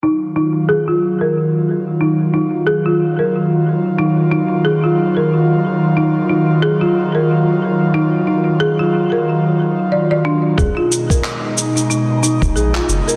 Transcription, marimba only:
X:1
M:4/4
L:1/16
Q:"Swing 16ths" 1/4=91
K:Ebm
V:1 name="Marimba"
E z E z A F z B4 z E z E z | A F z B4 z E z E z A F z B- | B3 z E z E z A F z B4 z | E z E z A F z B4 z =d d =D z |
A F z B4 E E z E z A F z B |]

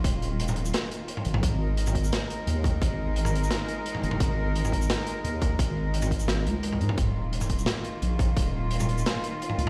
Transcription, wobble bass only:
X:1
M:4/4
L:1/16
Q:1/4=173
K:D#m
V:1 name="Wobble bass" clef=bass
D,,,8 z6 G,,, A,,, | G,,,8 z4 D,,4 | G,,,8 z6 F,,,2 | G,,,8 z4 D,,4 |
G,,,8- G,,,2 C,,4 G,,2 | D,,,8 z4 A,,,4 | D,,,8 z6 C,,2 |]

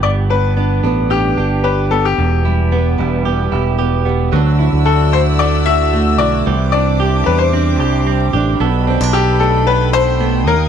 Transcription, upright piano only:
X:1
M:4/4
L:1/16
Q:1/4=112
K:G
V:1 name="Upright piano"
d2 B6 G4 B2 A G- | G12 z4 | z4 A2 c2 d2 e4 d2- | d2 d4 B c6 z3 |
z4 G2 A2 B2 c4 _B2 |]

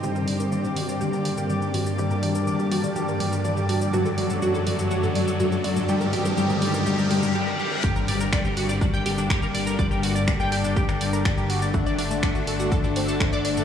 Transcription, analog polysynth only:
X:1
M:4/4
L:1/8
Q:1/4=123
K:Gm
V:1 name="Analog polysynth" clef=bass
[G,,D,G,]4 [G,,D,G,]4 | [G,,D,G,]4 [G,,D,G,]4 | [^F,,D,^F,]2 [F,,D,F,]2 [F,,D,F,]2 [F,,D,F,]2 | [G,,D,G,] [G,,D,G,] [G,,D,G,] [G,,D,G,] [G,,D,G,] [G,,D,G,] z2 |
[G,,D,G,]4- [G,,D,G,] [G,,D,G,]3 | [G,,D,G,]4- [G,,D,G,] [G,,D,G,]3 | [D,A,D]4- [D,A,D] [D,A,D]3 |]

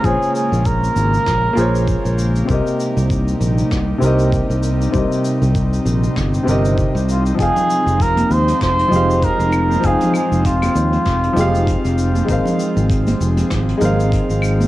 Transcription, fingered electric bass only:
X:1
M:4/4
L:1/16
Q:"Swing 16ths" 1/4=98
K:Fm
V:1 name="Fingered electric bass" clef=bass
B,,, z2 B,,,2 z A,,, z B,,, z B,,,2 z B,,,2 z | C,, z2 C,,2 z B,,, z C,, z C,,2 z C,,2 z | C,, z2 C,,2 z B,,, z G,,, z G,,,2 z C,,2 z | F,,, z2 F,,,2 z E,, z F,,, z F,,,2 z F,,,2 z |
F,,, z2 F,,,2 z E,, z F,,, z F,,,2 z F,,,2 z | A,,, z2 A,,,2 z F,,, z A,,, z A,,,2 z A,,,2 z |]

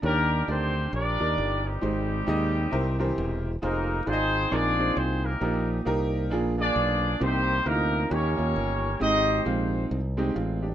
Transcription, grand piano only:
X:1
M:4/4
L:1/8
Q:"Swing" 1/4=134
K:Eb
V:1 name="Grand piano"
[DGB_d=d] z [DGBd]2 z [EGBd]2 z | [A,EGc] z [A,EGe]2 [=EGBc] [=E,DGBc]2 z | [EFAc] z [EFAde]2 [CEAB] [CEAc]2 z | [B,EGB] z [B,EGB]2 [B,DFA] [B,DFA]2 z |
[B,CEG] z [B,CE_F=F]2 [B,_DEG] [B,DEF]2 z | [A,CEG] z [A,CEF]2 z [A,CEG]2 z |]
V:2 name="Grand piano" clef=bass
E,3 z4 z | A,,3 z C,3 z | z4 B,,3 z | B,,3 z B,,3 z |
C,3 z E,3 z | A,,3 z3 [CF] [DG] |]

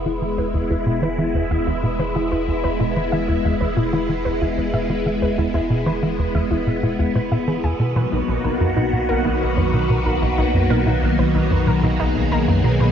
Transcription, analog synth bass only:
X:1
M:4/4
L:1/16
Q:1/4=93
K:Elyd
V:1 name="Analog synth bass" clef=bass
E, E, E,, E,, E,, B,, E, E, E,, E,, E,, B,, E, E, E,, E,, | E,, B,, E, E, E,, E,, E,, B,, E, E, E,, E,, E,, B,, E, E, | E,, E,, E,, B,, E, E, E,, E,, E,, B,, B,, E,, B,, B,, E, E,, | B,, B,, B,,, B,,, B,,, F,, B,, B,, B,,, B,,, B,,, F,, B,, B,, B,,, B,,, |
B,,, F,, B,, B,, B,,, B,,, B,,, F,, B,, B,, B,,, B,,, B,,, F,, B,, B,, |]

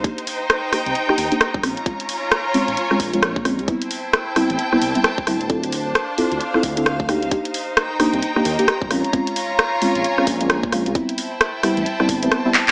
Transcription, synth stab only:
X:1
M:4/4
L:1/16
Q:"Swing 16ths" 1/4=132
K:Bblyd
V:1 name="Synth stab"
[B,D_EG] z4 z [B,DEG] z2 [B,DEG] z [B,DEG] z2 [_A,C_DF] z | [_A,C_DF] z4 z [A,CDF] z2 [A,CDF] z [A,CDF] z2 [A,CDF] z | [G,=B,CE] z4 z [G,B,CE] z2 [G,B,CE] z [G,B,CE] z2 [G,B,CE] z | [CEFA] z4 z [CEFA] z2 [CEFA] z [CEFA] z2 [B,D_EG] z |
[B,D_EG] z4 z [B,DEG] z2 [B,DEG] z [B,DEG] z2 [_A,C_DF] z | [_A,C_DF] z4 z [A,CDF] z2 [A,CDF] z [A,CDF] z2 [A,CDF] z | [G,=B,CE] z4 z [G,B,CE] z2 [G,B,CE] z [G,B,CE]2 [G,B,CE] z2 |]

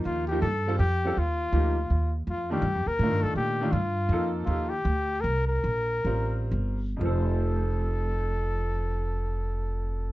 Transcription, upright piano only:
X:1
M:3/4
L:1/8
Q:"Swing" 1/4=163
K:Eblyd
V:1 name="Upright piano"
[F,B,EF] [F,B,EG] z [G,CFA] z [G,CFA] | z2 [F,B,EG] z3 | z [E,A,DF] z2 [E,A,DF]2- | [E,A,DF] [E,A,DF] z2 [F,B,EA]2 |
[F,B,EG] z4 z | z2 [G,CFB]3 z | [F,,F,CAc]6- | [F,,F,CAc]6 |]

